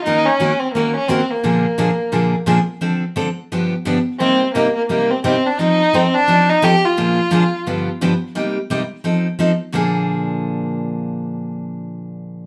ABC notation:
X:1
M:4/4
L:1/16
Q:"Swing" 1/4=173
K:Bbmix
V:1 name="Fiddle"
E2 _D4 C2 B,2 D2 C2 B,2- | B,8- B,2 z6 | z16 | C4 B,2 B,2 B,2 C2 C2 D2 |
E4 C2 D4 E2 G2 F2- | F8- F2 z6 | z16 | z16 |
z16 |]
V:2 name="Steel-string acoustic guitar"
[E,B,_D_GB]2 z2 [E,B,DGB] z3 [E,B,DGB]2 z2 [E,B,DGB] z3 | [B,,D,F,B,DA]2 z2 [B,,D,F,B,DA] z3 [B,,D,F,B,DA]2 z2 [B,,D,F,B,DA] z3 | [D,F,CD=A]2 z2 [D,F,CDA] z3 [G,,D,F,=B,DG]2 z2 [G,,D,F,B,DG] z3 | [C,G,B,EG]2 z2 [C,G,B,EG] z3 [C,G,B,EG]2 z2 [C,G,B,EG] z3 |
[F,CE=A]2 z2 [F,CEA] z3 [F,CEA]2 z2 [F,CEA] z3 | [B,,D,F,B,DA]2 z2 [B,,D,F,B,DA] z3 [G,,D,F,=B,DG]2 z2 [G,,D,F,B,DG] z3 | [C,G,B,EG]2 z2 [C,G,B,EG] z3 [F,CE=A]2 z2 [F,CEA] z3 | [B,,D,F,B,DA]16- |
[B,,D,F,B,DA]16 |]